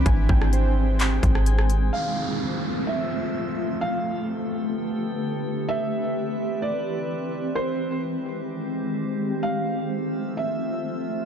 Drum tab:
HH |x---x---x-x-x-x-|----------------|----------------|----------------|
CP |--------x-------|----------------|----------------|----------------|
SD |---r-------r-r--|----------------|----------------|----------------|
BD |o-o-------o-----|----------------|----------------|----------------|

HH |----------------|----------------|
CP |----------------|----------------|
SD |----------------|----------------|
BD |----------------|----------------|